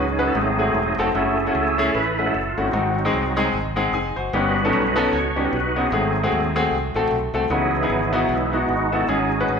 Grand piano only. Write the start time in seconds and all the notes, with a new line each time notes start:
Already playing: G#2
0.18 C#4 D#4 F#4 B4
0.35 G#2
0.58 A3 C4 F#4 G#4
0.99 A3 C4 F#4 A4
1.14 A3 C#4 E4 F#4
1.46 A3 C#4 E4 F#4
1.78 A3 C#4 E4 G#4
2.18 A3 C#4 E4 F#4
2.57 A3 C#4 E4 F#4
2.73 G#2 G#3 C4 D#4 F#4
3.05 G#3 C4 D#4 G#4
3.36 G#3 C4 D#4 G#4
3.76 G#3 C4 D#4 G#4 F#5
3.94 D#4 G#4 G#5
4.16 F#4 C5
4.33 G2 B3 C#4 D#4 G4
4.65 B3 C#4 D#4 A4
4.96 B3 C#4 D#4 A4
5.36 B3 C#4 D#4 G4
5.76 B3 C#4 D#4 F#4
5.93 G#2 A3 C4 F#4 G#4
6.23 A3 C4 F#4 G#4
6.56 A3 C4 F#4 G#4
6.95 A3 C4 F#4 A4
7.34 A3 C4 F#4 A4
7.50 C#3 B3 D#4 E4 F#4
7.82 B3 D#4 E4 G#4
8.13 B3 D#4 E4 F#4
8.53 B3 D#4 E4 F#4
8.92 B3 D#4 E4 F#4
9.08 G#2 C#4 D#4 F#4 G#4
9.40 C#4 D#4 F#4 B4